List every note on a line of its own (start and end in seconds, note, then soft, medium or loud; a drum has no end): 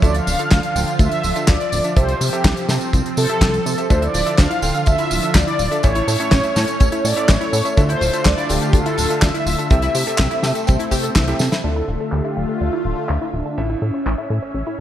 0.00 0.21 D2 loud
0.00 0.36 D3 medium
0.00 1.95 D3 medium
0.00 5.79 F3 medium
0.00 0.36 D4 medium
0.00 0.36 F4 medium
0.00 1.95 F4 loud
0.00 0.36 A4 medium
0.00 0.15 D5 loud
0.00 0.36 E5 loud
0.00 kick loud
0.00 closed hi-hat medium
0.00 tambourine soft
0.14 0.96 F5 loud
0.14 closed hi-hat medium
0.14 tambourine soft
0.27 0.36 D1 medium
0.27 open hi-hat loud
0.27 tambourine medium
0.39 0.73 D3 medium
0.39 0.73 D4 medium
0.39 0.73 F4 medium
0.39 0.73 A4 medium
0.39 0.73 F5 loud
0.39 closed hi-hat medium
0.39 tambourine soft
0.51 0.61 D2 loud
0.51 kick loud
0.51 snare loud
0.51 clap medium
0.51 closed hi-hat medium
0.51 tambourine soft
0.63 closed hi-hat medium
0.63 tambourine soft
0.75 0.85 D1 loud
0.75 0.91 D3 medium
0.75 0.91 D4 medium
0.75 0.91 F4 medium
0.75 0.91 A4 medium
0.75 0.91 G5 medium
0.75 open hi-hat medium
0.75 tambourine medium
0.87 closed hi-hat medium
0.87 tambourine soft
0.99 1.09 D2 medium
0.99 1.45 E5 loud
0.99 kick loud
0.99 closed hi-hat medium
0.99 tambourine soft
1.11 closed hi-hat medium
1.11 tambourine soft
1.23 1.33 D1 medium
1.23 open hi-hat loud
1.23 tambourine medium
1.36 1.51 D3 medium
1.36 1.51 D4 medium
1.36 1.51 F4 medium
1.36 1.51 A4 medium
1.36 1.51 E5 loud
1.36 closed hi-hat medium
1.36 tambourine soft
1.48 1.58 D2 medium
1.48 1.98 D5 loud
1.48 kick loud
1.48 snare loud
1.48 clap loud
1.48 closed hi-hat medium
1.48 tambourine soft
1.60 closed hi-hat soft
1.60 tambourine soft
1.72 1.81 D1 medium
1.72 open hi-hat loud
1.72 tambourine medium
1.84 1.94 D4 medium
1.84 1.94 F4 medium
1.84 1.94 A4 medium
1.84 1.94 E5 loud
1.84 closed hi-hat medium
1.84 tambourine soft
1.96 2.15 C2 loud
1.96 2.30 C3 loud
1.96 3.88 C4 medium
1.96 2.30 C4 medium
1.96 2.30 G4 medium
1.96 2.30 A4 medium
1.96 2.21 C5 loud
1.96 2.30 E5 loud
1.96 kick loud
1.96 closed hi-hat medium
1.96 tambourine soft
2.08 closed hi-hat medium
2.08 tambourine soft
2.21 2.30 C3 medium
2.21 2.66 G4 medium
2.21 open hi-hat loud
2.21 tambourine medium
2.33 2.66 C3 medium
2.33 2.66 C4 medium
2.33 2.66 G4 medium
2.33 2.66 A4 medium
2.33 2.66 E5 loud
2.33 closed hi-hat medium
2.33 tambourine soft
2.44 2.54 C2 loud
2.44 kick loud
2.44 snare loud
2.44 clap loud
2.44 closed hi-hat medium
2.44 tambourine soft
2.56 closed hi-hat medium
2.56 tambourine soft
2.69 2.84 C3 medium
2.69 2.78 C3 loud
2.69 2.84 C4 medium
2.69 2.84 G4 medium
2.69 2.84 A4 medium
2.69 2.84 A5 medium
2.69 snare medium
2.69 open hi-hat loud
2.69 tambourine medium
2.81 closed hi-hat medium
2.81 tambourine soft
2.93 3.02 C2 loud
2.93 kick loud
2.93 closed hi-hat medium
2.93 tambourine soft
3.06 closed hi-hat medium
3.06 tambourine soft
3.17 3.27 C3 loud
3.17 3.92 A4 loud
3.17 open hi-hat loud
3.17 tambourine medium
3.29 3.45 C3 medium
3.29 3.45 C4 medium
3.29 3.45 G4 medium
3.29 3.45 A4 medium
3.29 3.45 E5 loud
3.29 closed hi-hat medium
3.29 tambourine soft
3.41 3.60 C2 loud
3.41 kick loud
3.41 snare loud
3.41 clap loud
3.41 closed hi-hat medium
3.41 tambourine soft
3.54 closed hi-hat medium
3.54 tambourine soft
3.66 3.75 C3 loud
3.66 open hi-hat medium
3.66 tambourine medium
3.78 3.87 C4 medium
3.78 3.87 G4 medium
3.78 3.87 A4 medium
3.78 3.87 E5 medium
3.78 closed hi-hat medium
3.78 tambourine soft
3.90 4.08 D2 loud
3.90 5.82 D3 medium
3.90 4.23 D3 medium
3.90 4.23 D4 medium
3.90 3.99 D4 medium
3.90 5.82 F4 loud
3.90 4.23 F4 medium
3.90 4.23 A4 medium
3.90 4.02 C5 loud
3.90 4.23 E5 loud
3.90 kick loud
3.90 closed hi-hat medium
3.90 tambourine soft
4.02 4.08 E4 loud
4.02 4.39 D5 loud
4.02 closed hi-hat medium
4.02 tambourine soft
4.14 4.23 D1 medium
4.14 4.24 F4 medium
4.14 open hi-hat loud
4.14 tambourine medium
4.26 4.60 D3 medium
4.26 4.60 D4 medium
4.26 4.60 F4 medium
4.26 4.60 A4 medium
4.26 4.36 A4 medium
4.26 4.60 E5 loud
4.26 closed hi-hat medium
4.26 tambourine soft
4.38 4.48 D2 loud
4.38 4.44 D4 medium
4.38 4.88 F5 loud
4.38 kick loud
4.38 snare loud
4.38 clap medium
4.38 closed hi-hat medium
4.38 tambourine soft
4.50 4.60 E4 loud
4.50 closed hi-hat medium
4.50 tambourine soft
4.62 4.72 D1 loud
4.62 4.78 D3 medium
4.62 4.78 D4 medium
4.62 4.68 F4 medium
4.62 4.78 F4 medium
4.62 4.78 A4 medium
4.62 4.78 G5 medium
4.62 open hi-hat loud
4.62 tambourine medium
4.75 4.86 A4 medium
4.75 closed hi-hat medium
4.75 tambourine soft
4.86 4.96 D2 medium
4.86 4.96 D4 medium
4.86 5.37 E5 loud
4.86 kick loud
4.86 closed hi-hat medium
4.86 tambourine soft
4.98 5.04 E4 loud
4.98 closed hi-hat medium
4.98 tambourine soft
5.11 5.20 D1 medium
5.11 5.20 F4 medium
5.11 open hi-hat loud
5.11 tambourine medium
5.22 5.38 D3 medium
5.22 5.38 D4 medium
5.22 5.38 F4 medium
5.22 5.32 A4 medium
5.22 5.38 A4 medium
5.22 5.38 E5 loud
5.22 closed hi-hat medium
5.22 tambourine soft
5.35 5.44 D2 medium
5.35 5.41 D4 medium
5.35 5.85 D5 loud
5.35 kick loud
5.35 snare loud
5.35 clap loud
5.35 closed hi-hat medium
5.35 tambourine soft
5.47 5.57 E4 loud
5.47 closed hi-hat soft
5.47 tambourine soft
5.59 5.68 D1 medium
5.59 5.65 F4 medium
5.59 open hi-hat loud
5.59 tambourine medium
5.71 5.81 D4 medium
5.71 5.81 F4 medium
5.71 5.83 A4 medium
5.71 5.81 A4 medium
5.71 5.81 E5 medium
5.71 closed hi-hat medium
5.71 tambourine soft
5.83 6.02 A1 loud
5.83 6.17 A2 loud
5.83 9.67 A3 medium
5.83 5.93 C#4 medium
5.83 6.17 C#4 medium
5.83 7.75 C#4 medium
5.83 6.17 E4 medium
5.83 6.17 A4 medium
5.83 6.06 C#5 loud
5.83 6.17 E5 loud
5.83 kick loud
5.83 closed hi-hat medium
5.83 tambourine soft
5.95 6.01 E4 loud
5.95 closed hi-hat medium
5.95 tambourine soft
6.08 6.17 A2 medium
6.08 6.17 A4 medium
6.08 7.07 C#5 loud
6.08 open hi-hat loud
6.08 tambourine medium
6.20 6.53 A2 medium
6.20 6.53 C#4 medium
6.20 6.53 E4 medium
6.20 6.53 A4 medium
6.20 6.29 C#5 medium
6.20 6.53 E5 loud
6.20 closed hi-hat medium
6.20 tambourine soft
6.31 6.41 A1 loud
6.31 6.38 C#4 medium
6.31 kick loud
6.31 snare loud
6.31 clap medium
6.31 closed hi-hat medium
6.31 tambourine soft
6.43 6.53 E4 loud
6.43 closed hi-hat medium
6.43 tambourine soft
6.56 6.71 A2 medium
6.56 6.65 A2 loud
6.56 6.71 C#4 medium
6.56 6.71 E4 medium
6.56 6.62 A4 medium
6.56 6.71 A4 medium
6.56 6.71 A5 medium
6.56 snare medium
6.56 open hi-hat loud
6.56 tambourine medium
6.68 6.80 C#5 medium
6.68 closed hi-hat medium
6.68 tambourine soft
6.80 6.90 A1 loud
6.80 6.90 C#4 medium
6.80 kick loud
6.80 closed hi-hat medium
6.80 tambourine soft
6.92 6.98 E4 loud
6.92 closed hi-hat medium
6.92 tambourine soft
7.04 7.14 A2 loud
7.04 7.14 A4 medium
7.04 7.27 D5 loud
7.04 open hi-hat loud
7.04 tambourine medium
7.16 7.32 A2 medium
7.16 7.32 C#4 medium
7.16 7.32 E4 medium
7.16 7.32 A4 medium
7.16 7.26 C#5 medium
7.16 7.32 E5 loud
7.16 closed hi-hat medium
7.29 7.38 A1 medium
7.29 7.34 C#4 medium
7.29 7.79 C#5 loud
7.29 kick loud
7.29 snare loud
7.29 clap loud
7.29 closed hi-hat medium
7.29 tambourine soft
7.41 7.50 E4 loud
7.41 closed hi-hat medium
7.53 7.62 A2 medium
7.53 7.58 A4 medium
7.53 open hi-hat loud
7.53 tambourine medium
7.65 7.74 C#4 medium
7.65 7.74 E4 medium
7.65 7.74 A4 medium
7.65 7.76 C#5 medium
7.65 7.74 E5 medium
7.65 closed hi-hat medium
7.65 tambourine soft
7.77 7.96 D2 loud
7.77 8.10 D3 medium
7.77 9.69 D3 medium
7.77 7.86 D4 medium
7.77 8.10 D4 medium
7.77 8.10 F4 medium
7.77 9.69 F4 medium
7.77 8.10 A4 medium
7.77 7.83 A4 loud
7.77 8.10 E5 loud
7.77 11.60 E5 medium
7.77 kick loud
7.77 closed hi-hat medium
7.77 tambourine soft
7.89 7.95 E4 loud
7.89 8.27 C5 loud
7.89 closed hi-hat medium
7.89 tambourine soft
8.01 8.10 D1 medium
8.01 8.11 F4 medium
8.01 open hi-hat loud
8.01 tambourine medium
8.13 8.47 D3 loud
8.13 8.47 D4 medium
8.13 8.47 F4 medium
8.13 8.23 A4 medium
8.13 8.47 A4 medium
8.13 8.47 E5 loud
8.13 closed hi-hat medium
8.13 tambourine soft
8.25 8.35 D2 loud
8.25 8.31 D4 medium
8.25 8.48 D5 loud
8.25 kick loud
8.25 snare loud
8.25 clap loud
8.25 closed hi-hat medium
8.25 tambourine soft
8.38 8.47 E4 loud
8.38 closed hi-hat medium
8.38 tambourine soft
8.49 8.59 D1 loud
8.49 8.65 D3 medium
8.49 8.65 D4 medium
8.49 8.65 F4 medium
8.49 8.55 F4 medium
8.49 8.75 G4 medium
8.49 8.65 A4 medium
8.49 8.65 G5 medium
8.49 open hi-hat loud
8.49 tambourine medium
8.61 8.73 A4 medium
8.61 closed hi-hat medium
8.61 tambourine soft
8.73 8.83 D2 medium
8.73 8.83 D4 medium
8.73 9.24 A4 loud
8.73 kick loud
8.73 closed hi-hat medium
8.73 tambourine soft
8.86 8.92 E4 loud
8.86 closed hi-hat medium
8.86 tambourine soft
8.98 9.07 D1 medium
8.98 9.07 F4 medium
8.98 open hi-hat loud
8.98 tambourine medium
9.10 9.25 D3 medium
9.10 9.25 D4 medium
9.10 9.25 F4 medium
9.10 9.25 A4 medium
9.10 9.20 A4 medium
9.10 9.25 E5 medium
9.10 closed hi-hat medium
9.10 tambourine soft
9.22 9.31 D2 medium
9.22 9.28 D4 medium
9.22 9.67 E5 loud
9.22 kick loud
9.22 snare loud
9.22 clap loud
9.22 closed hi-hat medium
9.22 tambourine soft
9.34 9.44 E4 loud
9.34 closed hi-hat medium
9.34 tambourine soft
9.46 9.56 D1 medium
9.46 9.52 F4 medium
9.46 open hi-hat loud
9.46 tambourine medium
9.59 9.68 D4 medium
9.59 9.68 F4 medium
9.59 9.70 A4 medium
9.59 9.68 A4 medium
9.59 9.68 E5 loud
9.59 closed hi-hat medium
9.59 tambourine soft
9.70 9.89 C2 loud
9.70 10.04 C3 loud
9.70 11.62 A3 medium
9.70 9.80 C4 medium
9.70 10.04 C4 medium
9.70 11.62 C4 medium
9.70 10.04 G4 medium
9.70 10.04 A4 medium
9.70 11.12 E5 loud
9.70 10.04 E5 loud
9.70 kick loud
9.70 closed hi-hat medium
9.70 tambourine soft
9.82 9.88 E4 loud
9.82 closed hi-hat medium
9.82 tambourine soft
9.95 10.04 C3 medium
9.95 10.04 G4 medium
9.95 open hi-hat loud
9.95 tambourine medium
10.07 10.40 C3 medium
10.07 10.40 C4 medium
10.07 10.40 G4 medium
10.07 10.16 A4 medium
10.07 10.40 A4 medium
10.07 10.40 E5 loud
10.07 closed hi-hat medium
10.07 tambourine soft
10.18 10.28 C2 loud
10.18 10.25 C4 medium
10.18 kick loud
10.18 snare loud
10.18 clap loud
10.18 closed hi-hat medium
10.18 tambourine soft
10.31 10.40 E4 loud
10.31 closed hi-hat medium
10.31 tambourine soft
10.43 10.52 C3 loud
10.43 10.59 C3 medium
10.43 10.59 C4 medium
10.43 10.49 G4 medium
10.43 10.59 G4 medium
10.43 10.59 A4 medium
10.43 10.58 A5 medium
10.43 snare medium
10.43 open hi-hat medium
10.43 tambourine medium
10.55 10.67 A4 medium
10.55 closed hi-hat medium
10.55 tambourine soft
10.67 10.77 C2 loud
10.67 10.77 C4 medium
10.67 kick loud
10.67 closed hi-hat medium
10.67 tambourine soft
10.79 10.85 E4 loud
10.79 closed hi-hat medium
10.79 tambourine soft
10.91 11.10 C3 loud
10.91 11.03 G4 loud
10.91 kick medium
10.91 open hi-hat loud
10.91 tambourine medium
11.03 11.15 A4 medium
11.03 closed hi-hat medium
11.03 tambourine soft
11.15 11.34 C2 loud
11.15 11.27 E5 loud
11.15 kick loud
11.15 snare loud
11.15 clap loud
11.15 closed hi-hat medium
11.15 tambourine soft
11.27 11.43 C3 loud
11.27 11.43 C4 medium
11.27 11.39 E4 medium
11.27 11.43 G4 medium
11.27 11.43 A4 medium
11.27 11.43 E5 loud
11.27 closed hi-hat medium
11.27 tambourine soft
11.39 11.49 C3 medium
11.39 11.49 A4 medium
11.39 snare medium
11.39 open hi-hat loud
11.39 tambourine medium
11.52 11.61 E4 loud
11.52 snare medium
11.52 closed hi-hat medium
11.52 tambourine soft
11.64 11.82 D2 medium
11.64 13.55 D3 medium
11.64 13.56 D3 medium
11.64 13.56 A3 medium
11.64 11.74 D4 medium
11.64 13.55 D4 medium
11.64 13.55 F4 medium
11.64 13.56 F4 medium
11.64 13.55 A4 medium
11.64 12.14 A4 loud
11.64 13.55 E5 medium
11.64 14.80 E5 medium
11.76 11.82 E4 loud
11.88 11.97 D1 medium
11.88 11.98 F4 medium
12.00 12.10 A4 medium
12.12 12.22 D2 loud
12.12 12.18 D4 medium
12.12 12.62 G4 loud
12.12 clap medium
12.25 12.34 E4 medium
12.37 12.46 D1 loud
12.37 12.42 F4 medium
12.49 12.60 A4 medium
12.61 12.70 D2 medium
12.61 12.70 D4 medium
12.61 13.06 F4 medium
12.73 12.79 E4 loud
12.85 12.94 D1 medium
12.85 12.95 F4 medium
12.97 13.07 A4 medium
13.09 13.18 D2 medium
13.09 13.15 D4 medium
13.09 clap loud
13.22 13.31 E4 loud
13.33 13.43 D1 medium
13.33 13.58 D4 loud
13.33 13.39 F4 medium
13.46 13.57 A4 medium
13.58 13.76 A1 medium
13.58 14.80 A2 medium
13.58 14.80 C#4 medium
13.58 13.67 C#4 medium
13.58 14.80 E4 medium
13.58 13.69 E4 loud
13.58 14.80 A4 medium
13.58 14.80 E5 medium
13.70 13.75 E4 medium
13.82 13.91 A2 medium
13.82 14.27 C#4 medium
13.82 13.91 A4 medium
13.94 14.03 C#5 medium
14.06 14.15 A1 loud
14.06 14.12 C#4 medium
14.06 clap loud
14.18 14.28 E4 medium
14.30 14.39 A2 loud
14.30 14.36 A4 medium
14.42 14.54 C#5 medium
14.54 14.64 A1 loud
14.54 14.64 C#4 medium
14.67 14.72 E4 medium